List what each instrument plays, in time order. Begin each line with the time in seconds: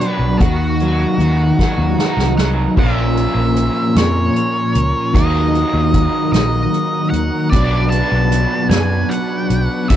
Already playing: overdriven electric guitar B2 D4, transistor combo organ B3 D4 F#4, lead electric guitar B4
0.01 overdriven electric guitar F#3, closed hi-hat
0.19 fingered electric bass B1
0.37 fingered electric bass D#2, overdriven electric guitar D#3, transistor combo organ D#4, lead electric guitar F#4, kick, closed hi-hat
0.42 transistor combo organ A#3
0.80 overdriven electric guitar F#3, closed hi-hat
1.18 fingered electric bass D#2, overdriven electric guitar D#3, closed hi-hat
1.59 overdriven electric guitar F#3, kick, snare
1.78 fingered electric bass D#2
1.99 overdriven electric guitar D#4, snare
2.17 fingered electric bass C2, snare
2.37 overdriven electric guitar F#3, lead electric guitar F#5, snare
2.76 fingered electric bass A#1, overdriven electric guitar A#2 F3 A#3, transistor combo organ C#4 A#4 C6, lead electric guitar E5, kick, crash
2.80 overdriven electric guitar C#4
3.17 closed hi-hat
3.35 fingered electric bass A#1
3.56 closed hi-hat
3.95 fingered electric bass F2, lead electric guitar C#5, snare, closed hi-hat
4.36 closed hi-hat
4.75 fingered electric bass C#2, closed hi-hat
5.13 fingered electric bass D#2, overdriven electric guitar D#3 F#3 A#3 D#4, transistor combo organ D#4 F#4, lead electric guitar D#5, kick, closed hi-hat
5.55 closed hi-hat
5.74 fingered electric bass D#2
5.94 kick, closed hi-hat
6.32 fingered electric bass A#1, lead electric guitar D#5, snare, closed hi-hat
6.74 closed hi-hat
7.10 fingered electric bass D#2, lead electric guitar F#5, closed hi-hat
7.50 fingered electric bass B1, overdriven electric guitar B2, transistor combo organ D4 F#4 B4, lead electric guitar D5, kick, closed hi-hat
7.54 overdriven electric guitar F#3 B3 D4
7.90 lead electric guitar A5, closed hi-hat
8.12 fingered electric bass B1
8.32 closed hi-hat
8.70 fingered electric bass F#2, lead electric guitar G#5, snare, closed hi-hat
9.10 lead electric guitar F#5, closed hi-hat
9.50 fingered electric bass B1, closed hi-hat
9.89 fingered electric bass D2, overdriven electric guitar D3 E3 A3, transistor combo organ D4 E4 A4, lead electric guitar E5, kick, closed hi-hat
9.93 overdriven electric guitar D4